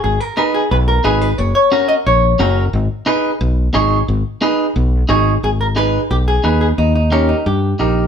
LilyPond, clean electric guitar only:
\new Staff \with { instrumentName = "Clean electric guitar" } { \time 4/4 \key gis \minor \tempo 4 = 178 r4 <dis' gis' b'>8 r4. <dis' gis' b'>8 r8 | r4 <cis' fis' ais'>8 r4. <cis' fis' ais'>8 r8 | r4 <dis' gis' b'>8 r4. <dis' gis' cis''>8 r8 | r4 <dis' gis' b'>8 r4. <dis' gis' cis''>8 r8 |
r4 <dis' gis' b'>8 r4. <dis' gis' b'>8 r8 | r4 <dis' g' ais'>8 r4. <dis' g' ais'>8 r8 | }